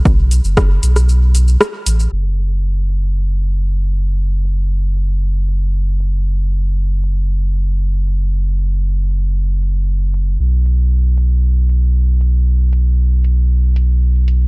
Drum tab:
HH |--x---x---x---x-|--x---x---x---x-|--x---x---x---x-|--x---x---x---x-|
SH |x-xxx-xxx-xxx-xx|----------------|----------------|----------------|
SD |----r--r----r---|----------------|----------------|----------------|
BD |o---o-----------|----------------|----------------|----------------|

HH |--x---x---x---x-|--x---x---x---x-|--x---x---x---x-|
SH |----------------|----------------|----------------|
SD |----------------|----------------|----------------|
BD |----------------|----------------|----------------|